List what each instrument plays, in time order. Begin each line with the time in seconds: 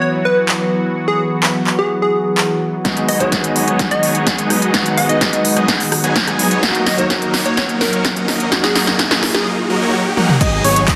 Already playing: analog synth pad E3 F#3 B3 F#4, grand piano F#3 B3 E4 F#4
0.02 digital synth lead C#5
0.25 digital synth lead B4
0.49 clap
1.08 digital synth lead G#4
1.43 clap
1.67 clap
1.79 digital synth lead G#4
2.02 digital synth lead G#4
2.38 clap
2.84 analog synth bass G#1, analog synth pad D#3 G#3 B3 F#4, supersaw synth F#3 B3 D#4 G#4 D#5, grand piano G#3 B3 D#4 F#4, kick, snare, closed hi-hat, riser
2.97 closed hi-hat
3.08 analog synth bass G#1, supersaw synth F#3 B3 D#4 G#4 C#5, digital synth lead D#5, open hi-hat
3.19 grand piano G#3 B3 D#4 F#4, digital synth lead C#5, closed hi-hat
3.32 analog synth bass G#1, supersaw synth F#3 B3 D#4 G#4 D#5, kick, snare, closed hi-hat
3.44 closed hi-hat
3.56 open hi-hat
3.68 analog synth bass G#1, supersaw synth F#3 B3 D#4 G#4 C#5, closed hi-hat
3.79 kick, snare, closed hi-hat
3.91 digital synth lead D#5, closed hi-hat
4.03 open hi-hat
4.15 closed hi-hat
4.27 kick, snare, closed hi-hat
4.38 analog synth bass G#1, supersaw synth F#3 B3 D#4 G#4 D#5, closed hi-hat
4.50 cross-stick, open hi-hat
4.62 closed hi-hat
4.73 analog synth bass G#1, supersaw synth F#3 B3 D#4 G#4 F#5, grand piano G#3 B3 D#4 F#4, kick, snare, closed hi-hat
4.86 closed hi-hat
4.97 analog synth bass G#1, supersaw synth F#3 B3 D#4 G#4 D#5, digital synth lead F#5, open hi-hat
5.08 grand piano G#3 B3 D#4 G#4, digital synth lead D#5, closed hi-hat
5.21 analog synth bass G#1, supersaw synth F#3 D#4 G#4, kick, snare, closed hi-hat
5.33 closed hi-hat
5.45 open hi-hat
5.57 analog synth bass G#1, supersaw synth F#3 B3 D#4 G#4 D#5, cross-stick, closed hi-hat
5.68 kick, snare, closed hi-hat
5.80 open hi-hat
5.92 cross-stick, open hi-hat
6.04 analog synth bass G#1, supersaw synth F#3 B3 D#4 G#4 G#5, closed hi-hat
6.16 kick, snare, closed hi-hat
6.27 cross-stick, closed hi-hat
6.39 open hi-hat
6.51 analog synth bass G#1, supersaw synth F#3 B3 D#4 G#4 C#5, closed hi-hat
6.62 analog synth bass D#2, grand piano F#3 A#3 D#4 F#4, analog synth pad F#3 A#3 F#4, kick, snare, closed hi-hat
6.75 closed hi-hat
6.86 analog synth bass D#2, supersaw synth F#3 A#3 D#4 A#4 C#5, digital synth lead D#5, snare, open hi-hat
6.97 grand piano F#3 A#3 D#4 F#4, digital synth lead C#5, closed hi-hat
7.10 analog synth bass D#2, supersaw synth F#3 A#3 D#4 A#4 D#5, kick, snare, closed hi-hat
7.22 closed hi-hat
7.34 snare, open hi-hat
7.46 analog synth bass D#2, supersaw synth F#3 A#3 D#4 A#4 C#5, digital synth lead C#5, closed hi-hat
7.57 digital synth lead C#5, kick, snare, closed hi-hat
7.69 closed hi-hat
7.81 digital synth lead A#4, snare, open hi-hat
7.93 closed hi-hat
8.05 kick, snare, closed hi-hat
8.16 analog synth bass D#2, supersaw synth F#3 A#3 D#4 A#4 D#5, closed hi-hat
8.28 snare, open hi-hat
8.40 closed hi-hat
8.51 analog synth bass D#2, grand piano F#3 A#3 D#4 F#4, supersaw synth F#3 A#3 D#4 A#4 F#5, kick, snare, closed hi-hat
8.64 digital synth lead G#4, snare, closed hi-hat
8.75 analog synth bass D#2, supersaw synth F#3 A#3 D#4 A#4 D#5, snare, open hi-hat
8.86 grand piano F#3 A#3 D#4 G#4, snare, closed hi-hat
8.99 analog synth bass D#2, supersaw synth F#3 A#3 D#4 A#4, kick, snare, closed hi-hat
9.11 snare, closed hi-hat
9.23 snare, open hi-hat
9.34 analog synth bass D#2, supersaw synth F#3 A#3 D#4 A#4 D#5, digital synth lead G#4, snare, closed hi-hat
9.70 supersaw synth F#3 A#3 D#4 A#4 D#5
9.82 supersaw synth F#3 A#3 D#4 A#4 C#5
10.17 supersaw synth F#3 A#3 D#4 A#4 F#5, high tom
10.29 mid tom
10.41 analog synth bass G#1, analog synth pad D#3 G#3 B3 F#4, supersaw synth F#3 B3 D#4 G#4 D#5, analog synth lead D#5, kick, closed hi-hat, crash, sub drop
10.64 analog synth bass G#1, supersaw synth F#3 B3 D#4 G#4 C#5, analog synth lead C#5, open hi-hat
10.76 closed hi-hat
10.88 analog synth bass G#1, supersaw synth F#3 D#4 G#4 D#5, analog synth lead D#5, kick, clap, closed hi-hat